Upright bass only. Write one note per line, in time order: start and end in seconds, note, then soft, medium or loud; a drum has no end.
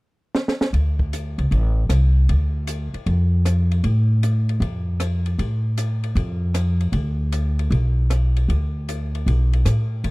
0.73 1.34 D2 medium
1.38 1.50 C#2 medium
1.51 1.87 A1 medium
1.89 2.26 C2 medium
2.29 2.89 D2 medium
2.94 muted upright bass stroke soft
3.06 3.80 F2 medium
3.84 4.57 A2 medium
4.60 5.34 F2 medium
5.38 6.12 A2 medium
6.15 6.89 F2 medium
6.92 7.66 D2 medium
7.70 8.44 B1 medium
8.48 9.22 D2 medium
9.26 9.62 B1 medium
9.65 10.01 A2 medium
10.04 10.11 D2 medium